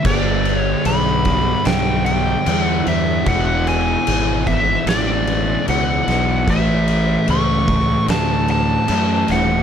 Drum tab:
CC |xxxxxxxx|xxxxxxxx|xxxxxxxx|
SD |----o---|----o--o|----o--o|
BD |o--o----|o--o----|o--o----|